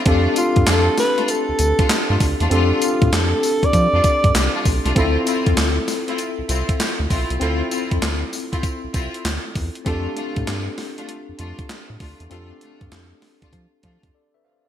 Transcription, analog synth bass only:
X:1
M:4/4
L:1/16
Q:"Swing 16ths" 1/4=98
K:Dm
V:1 name="Analog synth bass" clef=bass
F,,2 z G,, F,,2 z3 D,, D,, z2 G,, D,, E,, | F,,2 z A,, F,,2 z2 F, F,, z G,, C,, z =B,,, C,, | D,,2 z F,, D,,2 z3 C,, C,, z2 D,, =B,,, C,, | D,,2 z F,, D,,2 z3 C,, C,, z D,, z E,, z |
F,,2 z A,, G,,2 z3 F,, F,, z2 A,, D,, E,, | F,,2 z G,, F,,2 z2 F, z F, F,, z4 |]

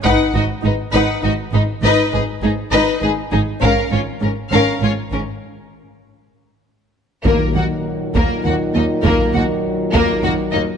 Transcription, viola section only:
X:1
M:3/4
L:1/8
Q:1/4=100
K:A#phr
V:1 name="Viola section"
D D D D D D | D D D D D D | C C C C C C | z6 |
[K:Ebm] B, B, z B, B, B, | B, B, z B, B, B, |]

